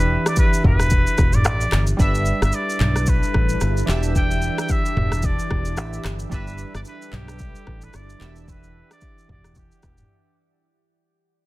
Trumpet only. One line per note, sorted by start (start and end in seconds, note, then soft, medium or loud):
0.00 0.29 B4 loud
0.27 0.38 D5 loud
0.39 0.63 B4 medium
0.66 1.37 B4 loud
1.35 1.46 D5 loud
1.47 1.86 D5 loud
2.01 2.40 E5 loud
2.43 2.56 E5 loud
2.55 3.10 D5 loud
3.09 3.89 B4 medium
4.17 4.56 G5 loud
4.60 4.72 G5 loud
4.71 5.26 E5 loud
5.25 6.05 D5 medium
6.33 6.72 B4 loud
6.76 6.80 D5 loud
6.87 7.16 B4 loud
7.14 7.85 G4 loud
7.84 7.97 B4 loud
7.95 8.37 D5 loud
8.43 8.51 D5 medium
8.49 8.91 B4 loud
8.92 9.27 D5 loud
9.30 9.59 D5 loud
9.57 10.38 G4 medium